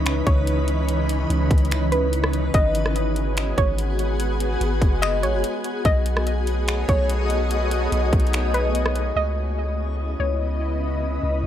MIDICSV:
0, 0, Header, 1, 6, 480
1, 0, Start_track
1, 0, Key_signature, 4, "minor"
1, 0, Tempo, 413793
1, 1029, Time_signature, 4, 2, 24, 8
1, 13302, End_track
2, 0, Start_track
2, 0, Title_t, "Synth pluck"
2, 0, Program_c, 0, 84
2, 307, Note_on_c, 0, 73, 82
2, 536, Note_off_c, 0, 73, 0
2, 2226, Note_on_c, 0, 71, 80
2, 2455, Note_off_c, 0, 71, 0
2, 2950, Note_on_c, 0, 75, 97
2, 3400, Note_off_c, 0, 75, 0
2, 4152, Note_on_c, 0, 73, 91
2, 4378, Note_off_c, 0, 73, 0
2, 5822, Note_on_c, 0, 75, 94
2, 6053, Note_off_c, 0, 75, 0
2, 6068, Note_on_c, 0, 73, 74
2, 6745, Note_off_c, 0, 73, 0
2, 6791, Note_on_c, 0, 75, 109
2, 7241, Note_off_c, 0, 75, 0
2, 7993, Note_on_c, 0, 73, 77
2, 8219, Note_off_c, 0, 73, 0
2, 9908, Note_on_c, 0, 71, 84
2, 10136, Note_off_c, 0, 71, 0
2, 10632, Note_on_c, 0, 75, 95
2, 11081, Note_off_c, 0, 75, 0
2, 11829, Note_on_c, 0, 73, 80
2, 12057, Note_off_c, 0, 73, 0
2, 13302, End_track
3, 0, Start_track
3, 0, Title_t, "Ambient pad"
3, 0, Program_c, 1, 92
3, 0, Note_on_c, 1, 49, 81
3, 0, Note_on_c, 1, 52, 76
3, 0, Note_on_c, 1, 61, 73
3, 0, Note_on_c, 1, 63, 73
3, 0, Note_on_c, 1, 71, 89
3, 2903, Note_off_c, 1, 52, 0
3, 2903, Note_off_c, 1, 63, 0
3, 2903, Note_off_c, 1, 71, 0
3, 2904, Note_off_c, 1, 49, 0
3, 2904, Note_off_c, 1, 61, 0
3, 2946, Note_on_c, 1, 68, 92
3, 2947, Note_on_c, 1, 59, 81
3, 2948, Note_on_c, 1, 66, 73
3, 6749, Note_off_c, 1, 68, 0
3, 6750, Note_off_c, 1, 59, 0
3, 6750, Note_off_c, 1, 66, 0
3, 6788, Note_on_c, 1, 59, 80
3, 6788, Note_on_c, 1, 66, 72
3, 6789, Note_on_c, 1, 57, 74
3, 6789, Note_on_c, 1, 73, 74
3, 6790, Note_on_c, 1, 68, 72
3, 6790, Note_on_c, 1, 75, 89
3, 10590, Note_off_c, 1, 57, 0
3, 10590, Note_off_c, 1, 59, 0
3, 10590, Note_off_c, 1, 66, 0
3, 10591, Note_off_c, 1, 68, 0
3, 10591, Note_off_c, 1, 73, 0
3, 10591, Note_off_c, 1, 75, 0
3, 10628, Note_on_c, 1, 75, 86
3, 10629, Note_on_c, 1, 71, 72
3, 10630, Note_on_c, 1, 49, 76
3, 10631, Note_on_c, 1, 61, 70
3, 10631, Note_on_c, 1, 64, 70
3, 13302, Note_off_c, 1, 49, 0
3, 13302, Note_off_c, 1, 61, 0
3, 13302, Note_off_c, 1, 64, 0
3, 13302, Note_off_c, 1, 71, 0
3, 13302, Note_off_c, 1, 75, 0
3, 13302, End_track
4, 0, Start_track
4, 0, Title_t, "Synth texture"
4, 0, Program_c, 2, 99
4, 0, Note_on_c, 2, 52, 82
4, 0, Note_on_c, 2, 63, 77
4, 0, Note_on_c, 2, 71, 93
4, 2903, Note_off_c, 2, 52, 0
4, 2904, Note_off_c, 2, 63, 0
4, 2949, Note_on_c, 2, 56, 85
4, 2949, Note_on_c, 2, 66, 73
4, 6743, Note_off_c, 2, 71, 0
4, 6750, Note_off_c, 2, 56, 0
4, 6750, Note_off_c, 2, 66, 0
4, 6787, Note_on_c, 2, 63, 78
4, 6787, Note_on_c, 2, 68, 74
4, 6787, Note_on_c, 2, 73, 94
4, 6789, Note_on_c, 2, 57, 85
4, 10589, Note_off_c, 2, 63, 0
4, 10589, Note_off_c, 2, 68, 0
4, 10590, Note_off_c, 2, 57, 0
4, 10590, Note_off_c, 2, 73, 0
4, 10632, Note_on_c, 2, 59, 81
4, 10632, Note_on_c, 2, 64, 70
4, 10632, Note_on_c, 2, 75, 91
4, 13302, Note_off_c, 2, 59, 0
4, 13302, Note_off_c, 2, 64, 0
4, 13302, Note_off_c, 2, 75, 0
4, 13302, End_track
5, 0, Start_track
5, 0, Title_t, "808-style bass"
5, 0, Program_c, 3, 38
5, 0, Note_on_c, 3, 37, 114
5, 262, Note_off_c, 3, 37, 0
5, 310, Note_on_c, 3, 37, 102
5, 1463, Note_off_c, 3, 37, 0
5, 1508, Note_on_c, 3, 37, 99
5, 1739, Note_off_c, 3, 37, 0
5, 1748, Note_on_c, 3, 37, 104
5, 2902, Note_off_c, 3, 37, 0
5, 2948, Note_on_c, 3, 32, 106
5, 4102, Note_off_c, 3, 32, 0
5, 4150, Note_on_c, 3, 32, 110
5, 5303, Note_off_c, 3, 32, 0
5, 5347, Note_on_c, 3, 32, 100
5, 5578, Note_off_c, 3, 32, 0
5, 5586, Note_on_c, 3, 30, 109
5, 6067, Note_on_c, 3, 33, 104
5, 6085, Note_off_c, 3, 30, 0
5, 6189, Note_on_c, 3, 30, 106
5, 6206, Note_off_c, 3, 33, 0
5, 6303, Note_off_c, 3, 30, 0
5, 6787, Note_on_c, 3, 35, 116
5, 7941, Note_off_c, 3, 35, 0
5, 7988, Note_on_c, 3, 35, 103
5, 9142, Note_off_c, 3, 35, 0
5, 9190, Note_on_c, 3, 35, 99
5, 9419, Note_off_c, 3, 35, 0
5, 9427, Note_on_c, 3, 35, 101
5, 10581, Note_off_c, 3, 35, 0
5, 10626, Note_on_c, 3, 37, 107
5, 11781, Note_off_c, 3, 37, 0
5, 11830, Note_on_c, 3, 37, 99
5, 12983, Note_off_c, 3, 37, 0
5, 13029, Note_on_c, 3, 37, 96
5, 13259, Note_off_c, 3, 37, 0
5, 13302, End_track
6, 0, Start_track
6, 0, Title_t, "Drums"
6, 67, Note_on_c, 9, 42, 67
6, 75, Note_on_c, 9, 26, 127
6, 183, Note_off_c, 9, 42, 0
6, 191, Note_off_c, 9, 26, 0
6, 309, Note_on_c, 9, 36, 93
6, 309, Note_on_c, 9, 42, 66
6, 425, Note_off_c, 9, 36, 0
6, 425, Note_off_c, 9, 42, 0
6, 549, Note_on_c, 9, 42, 82
6, 665, Note_off_c, 9, 42, 0
6, 787, Note_on_c, 9, 42, 66
6, 903, Note_off_c, 9, 42, 0
6, 1027, Note_on_c, 9, 42, 84
6, 1143, Note_off_c, 9, 42, 0
6, 1268, Note_on_c, 9, 42, 85
6, 1384, Note_off_c, 9, 42, 0
6, 1512, Note_on_c, 9, 42, 72
6, 1628, Note_off_c, 9, 42, 0
6, 1747, Note_on_c, 9, 36, 94
6, 1750, Note_on_c, 9, 42, 66
6, 1830, Note_off_c, 9, 42, 0
6, 1830, Note_on_c, 9, 42, 51
6, 1863, Note_off_c, 9, 36, 0
6, 1911, Note_off_c, 9, 42, 0
6, 1911, Note_on_c, 9, 42, 38
6, 1989, Note_off_c, 9, 42, 0
6, 1989, Note_on_c, 9, 42, 72
6, 1997, Note_on_c, 9, 26, 123
6, 2105, Note_off_c, 9, 42, 0
6, 2113, Note_off_c, 9, 26, 0
6, 2229, Note_on_c, 9, 42, 70
6, 2345, Note_off_c, 9, 42, 0
6, 2470, Note_on_c, 9, 42, 84
6, 2586, Note_off_c, 9, 42, 0
6, 2594, Note_on_c, 9, 37, 107
6, 2708, Note_on_c, 9, 42, 65
6, 2710, Note_off_c, 9, 37, 0
6, 2824, Note_off_c, 9, 42, 0
6, 2947, Note_on_c, 9, 42, 88
6, 2948, Note_on_c, 9, 36, 115
6, 3063, Note_off_c, 9, 42, 0
6, 3064, Note_off_c, 9, 36, 0
6, 3188, Note_on_c, 9, 42, 82
6, 3304, Note_off_c, 9, 42, 0
6, 3314, Note_on_c, 9, 37, 93
6, 3430, Note_off_c, 9, 37, 0
6, 3431, Note_on_c, 9, 42, 71
6, 3547, Note_off_c, 9, 42, 0
6, 3667, Note_on_c, 9, 42, 63
6, 3783, Note_off_c, 9, 42, 0
6, 3908, Note_on_c, 9, 42, 68
6, 3916, Note_on_c, 9, 26, 125
6, 4024, Note_off_c, 9, 42, 0
6, 4032, Note_off_c, 9, 26, 0
6, 4150, Note_on_c, 9, 36, 93
6, 4151, Note_on_c, 9, 42, 67
6, 4266, Note_off_c, 9, 36, 0
6, 4267, Note_off_c, 9, 42, 0
6, 4390, Note_on_c, 9, 42, 86
6, 4506, Note_off_c, 9, 42, 0
6, 4629, Note_on_c, 9, 42, 64
6, 4745, Note_off_c, 9, 42, 0
6, 4869, Note_on_c, 9, 42, 88
6, 4985, Note_off_c, 9, 42, 0
6, 5108, Note_on_c, 9, 42, 80
6, 5224, Note_off_c, 9, 42, 0
6, 5350, Note_on_c, 9, 42, 74
6, 5466, Note_off_c, 9, 42, 0
6, 5586, Note_on_c, 9, 36, 97
6, 5587, Note_on_c, 9, 42, 63
6, 5702, Note_off_c, 9, 36, 0
6, 5703, Note_off_c, 9, 42, 0
6, 5828, Note_on_c, 9, 42, 68
6, 5837, Note_on_c, 9, 26, 127
6, 5944, Note_off_c, 9, 42, 0
6, 5953, Note_off_c, 9, 26, 0
6, 6071, Note_on_c, 9, 42, 71
6, 6187, Note_off_c, 9, 42, 0
6, 6309, Note_on_c, 9, 42, 88
6, 6425, Note_off_c, 9, 42, 0
6, 6547, Note_on_c, 9, 42, 64
6, 6663, Note_off_c, 9, 42, 0
6, 6786, Note_on_c, 9, 42, 83
6, 6787, Note_on_c, 9, 36, 121
6, 6902, Note_off_c, 9, 42, 0
6, 6903, Note_off_c, 9, 36, 0
6, 7027, Note_on_c, 9, 42, 77
6, 7143, Note_off_c, 9, 42, 0
6, 7153, Note_on_c, 9, 37, 98
6, 7269, Note_off_c, 9, 37, 0
6, 7269, Note_on_c, 9, 42, 73
6, 7385, Note_off_c, 9, 42, 0
6, 7507, Note_on_c, 9, 42, 62
6, 7623, Note_off_c, 9, 42, 0
6, 7746, Note_on_c, 9, 42, 68
6, 7755, Note_on_c, 9, 26, 127
6, 7862, Note_off_c, 9, 42, 0
6, 7871, Note_off_c, 9, 26, 0
6, 7989, Note_on_c, 9, 36, 98
6, 7989, Note_on_c, 9, 42, 69
6, 8105, Note_off_c, 9, 36, 0
6, 8105, Note_off_c, 9, 42, 0
6, 8230, Note_on_c, 9, 42, 88
6, 8346, Note_off_c, 9, 42, 0
6, 8468, Note_on_c, 9, 42, 65
6, 8584, Note_off_c, 9, 42, 0
6, 8708, Note_on_c, 9, 42, 83
6, 8824, Note_off_c, 9, 42, 0
6, 8947, Note_on_c, 9, 42, 81
6, 9063, Note_off_c, 9, 42, 0
6, 9191, Note_on_c, 9, 42, 71
6, 9307, Note_off_c, 9, 42, 0
6, 9427, Note_on_c, 9, 36, 95
6, 9429, Note_on_c, 9, 42, 64
6, 9508, Note_off_c, 9, 42, 0
6, 9508, Note_on_c, 9, 42, 53
6, 9543, Note_off_c, 9, 36, 0
6, 9589, Note_off_c, 9, 42, 0
6, 9589, Note_on_c, 9, 42, 39
6, 9667, Note_off_c, 9, 42, 0
6, 9667, Note_on_c, 9, 42, 68
6, 9676, Note_on_c, 9, 26, 125
6, 9783, Note_off_c, 9, 42, 0
6, 9792, Note_off_c, 9, 26, 0
6, 9910, Note_on_c, 9, 42, 68
6, 10026, Note_off_c, 9, 42, 0
6, 10149, Note_on_c, 9, 42, 85
6, 10265, Note_off_c, 9, 42, 0
6, 10274, Note_on_c, 9, 37, 99
6, 10388, Note_on_c, 9, 42, 64
6, 10390, Note_off_c, 9, 37, 0
6, 10504, Note_off_c, 9, 42, 0
6, 13302, End_track
0, 0, End_of_file